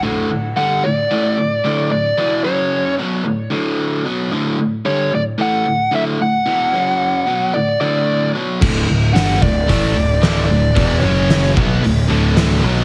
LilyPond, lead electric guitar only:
\new Staff \with { instrumentName = "Lead electric guitar" } { \time 4/4 \key d \major \tempo 4 = 112 r4 fis''8 d''2 d''8~ | d''8 cis''4 r2 r8 | r4 cis''8 d''8 fis''4 e''8 fis''8~ | fis''2 d''8 d''4 r8 |
r4 fis''8 d''2 d''8~ | d''8 cis''4 r2 r8 | }